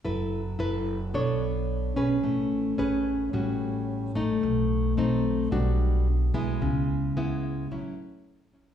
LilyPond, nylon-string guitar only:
\new Staff \with { instrumentName = "Nylon-string guitar" } { \time 4/4 \key a \major \tempo 4 = 110 << { <e' a' b'>8 r8 <e' a' b'>8 r8 <d' a' cis''>4. <cis' gis' b'>8~ | <cis' gis' b'>4 <cis' gis' b'>4 <g cis' fis'>4. <a dis'>8~ | <a dis'>4 <a c' dis'>4 <g d' fis'>4 r8 <gis b e'>8~ | <gis b e'>4 <gis b e'>4 <fis cis' e'>4. <fis cis' e'>8 | } \\ { fis2 b2 | a2 a,2 | b,2 b,2 | cis2 a,2 | } >> }